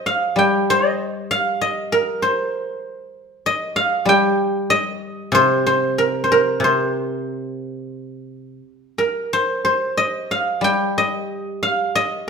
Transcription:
Already playing: A#4 C5 D#5
0.06 F5
0.36 G3 G5
0.70 D#5
1.31 F5
1.61 D#5
1.92 A#4
2.22 C5
3.46 D#5
3.76 F5
4.05 G3 G5
4.70 D#5
5.32 C3 C5
5.66 C5
5.98 A#4
6.24 C5
6.32 A#4
6.60 C3
6.64 C5
8.98 A#4
9.33 C5
9.65 C5
9.97 D#5
10.31 F5
10.61 G3 G5
10.98 D#5
11.63 F5
11.95 D#5

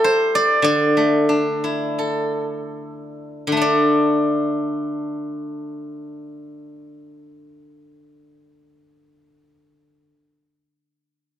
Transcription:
Already playing: G3 E4 G4 A4
0.04 C5
0.35 D5
0.62 D3 D5
0.97 A3
1.29 D4
1.64 E4
1.99 A4
3.47 D3
3.52 A3
3.57 D4
3.61 D5

